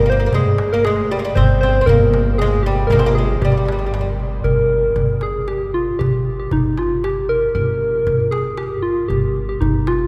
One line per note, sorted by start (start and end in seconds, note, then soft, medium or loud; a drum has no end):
0.00 0.30 G1 medium
0.00 0.11 A#4 medium
0.06 0.11 A#3 medium
0.06 0.37 C5 loud
0.06 darbuka ka soft
0.12 0.18 A#3 medium
0.20 0.25 A#3 medium
0.26 0.33 A#3 medium
0.33 1.33 G1 medium
0.33 0.73 G#3 medium
0.33 0.74 G#4 loud
0.33 darbuka dum medium
0.58 darbuka tek medium
0.73 0.85 A#3 medium
0.73 0.86 A#4 medium
0.85 1.11 G#3 medium
0.85 1.13 G#4 medium
0.85 darbuka tek medium
1.11 1.17 G3 medium
1.11 1.35 G4 medium
1.19 1.24 G#3 medium
1.25 1.37 G3 medium
1.35 1.85 G1 medium
1.35 1.62 C4 medium
1.35 1.59 C5 loud
1.35 darbuka dum medium
1.61 1.80 C4 medium
1.61 1.88 C5 loud
1.61 darbuka ka soft
1.81 1.88 C4 medium
1.86 2.86 G1 loud
1.86 2.41 A#3 medium
1.86 2.40 A#4 loud
1.86 darbuka dum medium
2.14 darbuka tek medium
2.38 2.64 G#3 medium
2.38 2.64 G#4 medium
2.38 darbuka tek medium
2.63 2.92 G3 medium
2.63 2.89 G4 medium
2.87 3.39 G1 loud
2.87 3.16 A#4 medium
2.87 darbuka dum medium
2.92 2.98 A#3 medium
2.99 3.04 C4 medium
3.06 3.18 A#3 medium
3.15 3.44 G#3 medium
3.15 3.43 G#4 medium
3.15 darbuka ka soft
3.41 4.41 G1 medium
3.41 3.50 G3 medium
3.41 4.19 G4 medium
3.41 darbuka dum loud
3.52 3.56 G3 soft
3.57 3.64 G3 soft
3.65 3.71 G3 soft
3.65 darbuka tek medium
3.72 3.77 G3 soft
3.79 3.85 G3 soft
3.86 3.93 G3 soft
3.94 4.00 G3 soft
3.94 darbuka tek medium
4.01 4.08 G3 soft
4.20 darbuka ka soft
4.44 4.93 G1 medium
4.44 5.24 A#4 medium
4.44 darbuka dum medium
4.96 5.96 G1 medium
4.96 darbuka dum medium
5.09 darbuka ka soft
5.21 5.49 G#4 medium
5.21 darbuka tek medium
5.48 5.76 G4 medium
5.48 darbuka tek medium
5.74 6.01 F4 medium
5.74 darbuka ka soft
5.99 6.49 G1 medium
5.99 6.38 G4 medium
5.99 darbuka dum medium
6.40 6.54 G4 medium
6.51 7.51 G1 medium
6.51 6.80 D#4 medium
6.51 darbuka dum medium
6.65 darbuka ka soft
6.78 7.04 F4 medium
6.78 darbuka tek medium
7.04 7.28 G4 medium
7.04 darbuka tek medium
7.29 7.53 A#4 medium
7.29 darbuka ka soft
7.55 8.04 G1 medium
7.55 8.33 A#4 loud
7.55 darbuka dum medium
8.07 9.06 G1 medium
8.07 darbuka dum medium
8.20 darbuka ka soft
8.31 8.59 G#4 medium
8.31 darbuka tek medium
8.57 8.84 G4 medium
8.57 darbuka tek medium
8.82 9.08 F4 medium
8.82 darbuka ka soft
9.08 9.59 G1 medium
9.08 9.45 G4 medium
9.08 darbuka dum medium
9.23 darbuka ka soft
9.36 darbuka ka soft
9.49 9.62 G4 medium
9.61 10.07 G1 medium
9.61 9.89 D#4 medium
9.61 darbuka dum medium
9.75 darbuka ka soft
9.87 10.07 F4 medium
9.87 darbuka tek medium